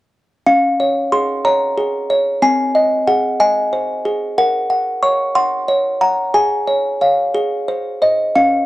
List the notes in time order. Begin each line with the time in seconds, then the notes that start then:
0.46 C#4 F5
0.80 C#5
1.12 G#4 C6
1.45 C#5 A#5
1.78 G#4
2.10 C#5
2.42 C4 G#5
2.75 D#5
3.07 G#4 F#5
3.40 D#5 G#5
3.73 C5
4.05 G#4
4.38 A#4 F#5
4.70 F#5
5.03 C#5 C#6
5.35 F#5 C6
5.68 C#5
6.01 F#5 A#5
6.34 G#4 G#5
6.67 C#5
7.01 C#5 F5
7.35 G#4
7.68 C5
8.02 C5 D#5
8.36 C#4 F5